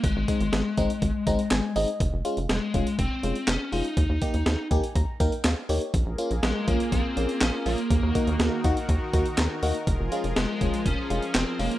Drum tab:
HH |x-xxx-xxx-xxx-ox|x-xxx-xxx-xxx-ox|x-xxx-xxx-xxx-ox|x-xxx-xxx-xxx-ox|
CP |------------x---|------------x---|------------x---|------------x---|
SD |----o-------o---|----o-------o---|----o-------o---|----o-------o---|
BD |o-o---o-o-o-----|o-----o-o-------|o-o---o-o-o-----|o-----o-o-------|

HH |x-xxx-xxx-xxx-ox|x-xxx-xxx-xxx-ox|
CP |------------x---|------------x---|
SD |----o-------o---|----o-------o---|
BD |o-o---o-o-o-----|o-----o-o-------|